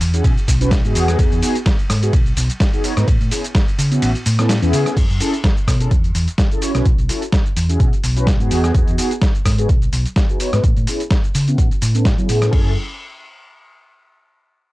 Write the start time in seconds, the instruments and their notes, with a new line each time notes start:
0.01 fingered electric bass E2, open hi-hat, shaker
0.13 analog polysynth C#4 E4 F#4 G#4, closed hi-hat, shaker
0.24 fingered electric bass B2, kick, closed hi-hat, ride, shaker
0.37 closed hi-hat, shaker
0.48 fingered electric bass B1, kick, open hi-hat, shaker
0.60 analog polysynth C#4 E4 F#4 B4, closed hi-hat, shaker
0.71 kick, snare, closed hi-hat, ride, shaker
0.83 fingered electric bass G#2, analog polysynth B3 D#4 F#4 G#4, closed hi-hat, shaker
0.95 fingered electric bass E2, open hi-hat, shaker
1.08 cross-stick, closed hi-hat, shaker
1.19 fingered electric bass E2, kick, closed hi-hat, ride, shaker
1.32 fingered electric bass E2, closed hi-hat, shaker
1.42 analog polysynth B3 D#4 F#4 G#4, open hi-hat, shaker
1.55 closed hi-hat, shaker
1.66 kick, snare, closed hi-hat, ride, shaker
1.79 closed hi-hat, shaker
1.90 fingered electric bass G#2, cross-stick, open hi-hat, shaker
2.02 analog polysynth B3 D#4 F#4 G#4, closed hi-hat, shaker
2.13 fingered electric bass B1, kick, closed hi-hat, ride, shaker
2.26 closed hi-hat, shaker
2.37 fingered electric bass B1, open hi-hat, shaker
2.50 closed hi-hat, shaker
2.60 kick, snare, closed hi-hat, ride, shaker
2.73 analog polysynth B3 D#4 F#4 G#4, closed hi-hat, shaker
2.83 analog polysynth B3 D#4 F#4 C#5, open hi-hat, shaker
2.96 fingered electric bass G#2, analog polysynth B3 D#4 F#4 B4, cross-stick, closed hi-hat, shaker
3.08 fingered electric bass A2, kick, closed hi-hat, ride, shaker
3.21 fingered electric bass A2, closed hi-hat, shaker
3.30 analog polysynth B3 C#4 E4 G#4, open hi-hat, shaker
3.44 closed hi-hat, shaker
3.55 kick, snare, closed hi-hat, ride, shaker
3.68 closed hi-hat, shaker
3.78 fingered electric bass C#3, open hi-hat, shaker
3.91 analog polysynth B3 C#4 E4 F#4, closed hi-hat, shaker
4.02 fingered electric bass A1, open hi-hat, ride, shaker
4.15 closed hi-hat, shaker
4.26 fingered electric bass A2, open hi-hat, shaker
4.38 analog polysynth B3 C#4 E4 A4, cross-stick, closed hi-hat, shaker
4.49 snare, closed hi-hat, ride, shaker
4.62 fingered electric bass E2, analog polysynth B3 C#4 E4 G#4, closed hi-hat, shaker
4.73 fingered electric bass C#3, open hi-hat, shaker
4.86 cross-stick, closed hi-hat, shaker
4.97 fingered electric bass F#2, kick, closed hi-hat, crash, shaker
5.10 fingered electric bass F#2, closed hi-hat, shaker
5.20 analog polysynth C#4 E4 G#4 A4, open hi-hat, shaker
5.33 closed hi-hat, shaker
5.44 kick, snare, closed hi-hat, shaker
5.57 closed hi-hat, shaker
5.68 fingered electric bass B2, kick, cross-stick, open hi-hat, shaker
5.80 analog polysynth C#4 E4 G#4 A4, closed hi-hat, shaker
5.91 fingered electric bass E2, kick, closed hi-hat, shaker
6.04 closed hi-hat, shaker
6.15 fingered electric bass E2, open hi-hat, shaker
6.28 closed hi-hat, shaker
6.38 kick, snare, closed hi-hat, shaker
6.51 analog polysynth C#4 E4 G#4 A4, closed hi-hat, shaker
6.61 analog polysynth C#4 E4 F#4 C#5, open hi-hat, shaker
6.74 fingered electric bass B1, analog polysynth C#4 E4 F#4 B4, cross-stick, closed hi-hat, shaker
6.86 fingered electric bass B1, kick, closed hi-hat, shaker
6.98 fingered electric bass B1, closed hi-hat, shaker
7.09 analog polysynth C#4 E4 F#4 A4, open hi-hat, shaker
7.22 closed hi-hat, shaker
7.32 kick, snare, closed hi-hat, shaker
7.46 closed hi-hat, shaker
7.57 fingered electric bass E2, open hi-hat, shaker
7.69 analog polysynth C#4 E4 F#4 G#4, closed hi-hat, shaker
7.80 fingered electric bass B2, kick, closed hi-hat, shaker
7.93 closed hi-hat, shaker
8.04 fingered electric bass B1, open hi-hat, shaker
8.16 analog polysynth C#4 E4 F#4 B4, closed hi-hat, shaker
8.27 kick, snare, closed hi-hat, shaker
8.39 fingered electric bass G#2, analog polysynth B3 D#4 F#4 G#4, closed hi-hat, shaker
8.51 fingered electric bass E2, open hi-hat, shaker
8.64 cross-stick, closed hi-hat, shaker
8.75 kick, closed hi-hat, shaker
8.87 fingered electric bass E2, closed hi-hat, shaker
8.98 analog polysynth B3 D#4 F#4 G#4, open hi-hat, shaker
9.11 closed hi-hat, shaker
9.21 kick, snare, closed hi-hat, shaker
9.35 closed hi-hat, shaker
9.45 fingered electric bass G#2, kick, cross-stick, open hi-hat, shaker
9.58 analog polysynth B3 D#4 F#4 G#4, closed hi-hat, shaker
9.69 fingered electric bass B1, kick, closed hi-hat, shaker
9.82 closed hi-hat, shaker
9.93 fingered electric bass B1, open hi-hat, shaker
10.06 closed hi-hat, shaker
10.16 kick, snare, closed hi-hat, shaker
10.29 analog polysynth B3 D#4 F#4 G#4, closed hi-hat, shaker
10.40 analog polysynth B3 D#4 F#4 C#5, open hi-hat, shaker
10.53 fingered electric bass G#2, analog polysynth B3 D#4 F#4 B4, cross-stick, closed hi-hat, shaker
10.64 fingered electric bass A2, kick, closed hi-hat, shaker
10.77 fingered electric bass A2, closed hi-hat, shaker
10.87 analog polysynth B3 C#4 E4 G#4, open hi-hat, shaker
11.00 closed hi-hat, shaker
11.11 kick, snare, closed hi-hat, shaker
11.24 closed hi-hat, shaker
11.35 fingered electric bass C#3, open hi-hat, shaker
11.48 analog polysynth B3 C#4 E4 F#4, closed hi-hat, shaker
11.58 fingered electric bass A1, kick, closed hi-hat, shaker
11.71 closed hi-hat, shaker
11.82 fingered electric bass A2, open hi-hat, shaker
11.94 analog polysynth B3 C#4 E4 A4, closed hi-hat, shaker
12.05 kick, snare, closed hi-hat, shaker
12.18 fingered electric bass F#3, analog polysynth B3 C#4 E4 G#4, closed hi-hat, shaker
12.29 fingered electric bass A2, open hi-hat, shaker
12.42 cross-stick, closed hi-hat, shaker
12.52 fingered electric bass F#2, analog polysynth C#4 E4 G#4 A4, kick, crash